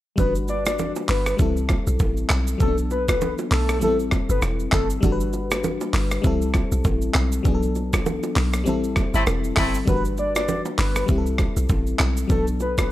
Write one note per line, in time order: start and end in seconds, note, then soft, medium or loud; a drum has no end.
0.16 0.92 G1 loud
0.16 1.36 G3 medium
0.16 1.36 D4 medium
0.16 1.37 F#4 medium
0.16 0.34 B4 loud
0.16 kick loud
0.16 low conga medium
0.16 shaker medium
0.21 1.38 B4 medium
0.35 shaker medium
0.48 0.64 D5 medium
0.48 low bongo soft
0.48 shaker medium
0.66 0.92 D5 medium
0.66 cross-stick loud
0.66 low bongo medium
0.66 shaker medium
0.79 high bongo medium
0.79 low conga medium
0.79 shaker medium
0.96 low bongo medium
0.96 shaker medium
1.09 1.34 G1 loud
1.09 1.35 B4 medium
1.09 clap medium
1.09 open hi-hat medium
1.09 high bongo medium
1.09 shaker soft
1.26 cross-stick medium
1.26 shaker medium
1.37 1.79 C2 loud
1.37 2.57 G3 medium
1.37 2.58 C4 medium
1.37 2.59 E4 medium
1.37 kick loud
1.37 low conga medium
1.37 shaker medium
1.42 2.59 A4 medium
1.57 shaker medium
1.69 kick loud
1.69 cross-stick medium
1.69 low bongo medium
1.69 shaker soft
1.87 1.98 B1 medium
1.87 shaker medium
2.00 2.25 A1 loud
2.00 kick loud
2.00 high bongo medium
2.00 shaker medium
2.17 shaker soft
2.29 2.55 B1 medium
2.29 cross-stick loud
2.29 clap loud
2.29 shaker medium
2.48 shaker medium
2.58 3.35 B1 loud
2.58 3.78 F#3 medium
2.58 3.79 B3 medium
2.58 2.68 C4 soft
2.58 2.76 A4 loud
2.58 kick loud
2.58 low conga medium
2.58 shaker medium
2.63 3.80 A4 medium
2.68 3.83 D4 medium
2.78 shaker medium
2.91 3.06 B4 medium
2.91 low bongo medium
2.91 shaker medium
3.08 3.35 B4 medium
3.08 kick medium
3.08 cross-stick loud
3.08 low bongo medium
3.08 shaker medium
3.21 high bongo medium
3.21 low conga medium
3.21 shaker medium
3.38 low bongo medium
3.38 shaker medium
3.51 3.83 B1 loud
3.51 3.78 A4 medium
3.51 clap medium
3.51 open hi-hat medium
3.51 high bongo medium
3.51 shaker soft
3.69 cross-stick medium
3.69 shaker medium
3.79 4.22 A1 loud
3.79 4.99 G3 medium
3.79 3.89 B3 medium
3.79 5.01 E4 medium
3.79 3.97 A4 medium
3.79 low conga medium
3.79 shaker medium
3.84 5.03 C4 medium
3.84 5.02 A4 medium
4.00 shaker medium
4.11 kick loud
4.11 cross-stick medium
4.11 low bongo medium
4.11 shaker soft
4.29 4.40 G1 medium
4.29 4.41 B4 medium
4.29 shaker medium
4.42 4.68 E1 medium
4.42 cross-stick loud
4.42 high bongo medium
4.42 shaker medium
4.60 shaker soft
4.72 4.98 G1 medium
4.72 4.88 A4 medium
4.72 kick loud
4.72 cross-stick loud
4.72 clap loud
4.72 shaker medium
4.90 shaker medium
5.01 5.77 G1 loud
5.01 6.20 G3 medium
5.01 6.21 D4 medium
5.01 6.22 F#4 medium
5.01 kick loud
5.01 low conga medium
5.01 shaker medium
5.06 5.12 A4 medium
5.12 6.26 B4 medium
5.21 shaker medium
5.33 low bongo soft
5.33 shaker medium
5.51 cross-stick loud
5.51 low bongo medium
5.51 shaker medium
5.64 high bongo medium
5.64 low conga medium
5.64 shaker medium
5.81 low bongo medium
5.81 shaker medium
5.94 6.19 G1 loud
5.94 clap medium
5.94 open hi-hat medium
5.94 high bongo medium
5.94 shaker soft
6.11 cross-stick medium
6.11 shaker medium
6.22 6.64 C2 loud
6.22 7.42 G3 medium
6.22 7.43 C4 medium
6.22 7.43 E4 medium
6.22 kick loud
6.22 low conga medium
6.22 shaker medium
6.27 7.44 A4 medium
6.42 shaker medium
6.54 kick medium
6.54 cross-stick medium
6.54 low bongo medium
6.54 shaker medium
6.72 6.83 B1 medium
6.72 shaker medium
6.84 7.10 A1 loud
6.84 kick loud
6.84 high bongo medium
6.84 shaker medium
7.02 shaker soft
7.14 7.40 B1 medium
7.14 cross-stick loud
7.14 clap loud
7.14 shaker medium
7.32 shaker medium
7.43 8.20 B1 loud
7.43 8.63 F#3 medium
7.43 8.64 B3 medium
7.43 8.65 D4 medium
7.43 kick loud
7.43 low conga medium
7.43 shaker medium
7.48 7.54 G#4 medium
7.55 8.68 A4 medium
7.63 shaker medium
7.75 low bongo medium
7.75 shaker medium
7.93 kick medium
7.93 cross-stick loud
7.93 low bongo medium
7.93 shaker medium
8.06 high bongo medium
8.06 low conga medium
8.06 shaker medium
8.23 low bongo medium
8.23 shaker medium
8.36 8.68 B1 loud
8.36 clap loud
8.36 open hi-hat medium
8.36 high bongo medium
8.36 shaker soft
8.54 cross-stick medium
8.54 shaker medium
8.64 9.06 A1 loud
8.64 9.84 G3 medium
8.64 9.85 C4 medium
8.64 9.86 E4 medium
8.64 low conga medium
8.64 shaker medium
8.69 9.86 A4 medium
8.84 shaker medium
8.96 kick loud
8.96 cross-stick loud
8.96 low bongo medium
8.96 shaker soft
9.14 9.25 G1 medium
9.14 9.22 A3 medium
9.14 9.22 C4 loud
9.14 9.22 E4 loud
9.14 shaker medium
9.27 9.52 E1 loud
9.27 cross-stick loud
9.27 high bongo medium
9.27 shaker medium
9.44 shaker soft
9.57 9.83 G1 medium
9.57 9.77 A3 medium
9.57 9.77 C4 medium
9.57 9.77 E4 loud
9.57 kick loud
9.57 cross-stick loud
9.57 clap loud
9.57 open hi-hat medium
9.57 shaker medium
9.75 shaker medium
9.85 10.62 G1 loud
9.85 11.05 G3 medium
9.85 11.06 D4 medium
9.85 11.07 F#4 medium
9.85 10.03 B4 loud
9.85 kick loud
9.85 low conga medium
9.85 shaker medium
9.90 9.96 A#4 medium
9.97 11.11 B4 medium
10.05 shaker medium
10.18 10.33 D5 medium
10.18 low bongo soft
10.18 shaker medium
10.36 10.62 D5 medium
10.36 cross-stick loud
10.36 low bongo medium
10.36 shaker medium
10.49 high bongo medium
10.49 low conga medium
10.49 shaker medium
10.66 low bongo medium
10.66 shaker medium
10.78 11.04 G1 loud
10.78 11.05 B4 medium
10.78 clap loud
10.78 open hi-hat medium
10.78 high bongo medium
10.78 shaker soft
10.96 cross-stick medium
10.96 shaker medium
11.06 11.49 C2 loud
11.06 12.26 G3 medium
11.06 12.27 C4 medium
11.06 12.28 E4 medium
11.06 kick loud
11.06 low conga medium
11.06 shaker medium
11.11 11.18 G4 medium
11.18 12.31 A4 medium
11.27 shaker medium
11.38 kick loud
11.38 cross-stick loud
11.38 low bongo medium
11.38 shaker soft
11.57 11.67 B1 medium
11.57 shaker medium
11.69 11.95 A1 loud
11.69 kick loud
11.69 high bongo medium
11.69 shaker medium
11.87 shaker medium
11.99 12.25 B1 medium
11.99 cross-stick loud
11.99 clap loud
11.99 shaker medium
12.17 shaker medium
12.27 12.92 B1 loud
12.27 12.92 F#3 medium
12.27 12.92 B3 medium
12.27 12.92 D4 medium
12.27 12.46 A4 loud
12.27 kick loud
12.27 low conga medium
12.27 shaker medium
12.32 12.92 A4 medium
12.48 shaker medium
12.60 12.76 B4 medium
12.60 low bongo medium
12.60 shaker medium
12.78 12.92 B4 medium
12.78 kick medium
12.78 cross-stick loud
12.78 low bongo medium
12.78 shaker medium